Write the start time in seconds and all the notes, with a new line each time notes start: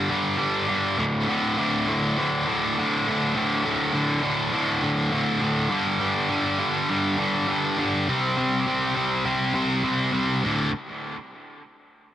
0.10 G2 D3 G3
0.38 G2 D3 G3
0.68 G2 D3 G3
0.98 D2 A2 D3
1.28 D2 A2 D3
1.58 D2 A2 D3
1.87 D2 A2 D3
2.18 D2 A2 D3
2.46 D2 A2 D3
2.78 D2 A2 D3
3.07 D2 A2 D3
3.36 D2 A2 D3
3.64 D2 A2 D3
3.93 D2 A2 D3
4.23 D2 A2 D3
4.53 D2 A2 D3
4.83 D2 A2 D3
5.12 D2 A2 D3
5.41 D2 A2 D3
5.70 G2 D3 G3
6.00 G2 D3 G3
6.29 G2 D3 G3
6.58 G2 D3 G3
6.90 G2 D3 G3
7.18 G2 D3 G3
7.48 G2 D3 G3
7.78 G2 D3 G3
8.09 C3 G3 C4
8.38 C3 G3 C4
8.66 C3 G3 C4
8.95 C3 G3 C4
9.25 C3 G3 C4
9.54 C3 G3 C4
9.84 C3 G3 C4
10.12 C3 G3 C4
10.44 D2 A2 D3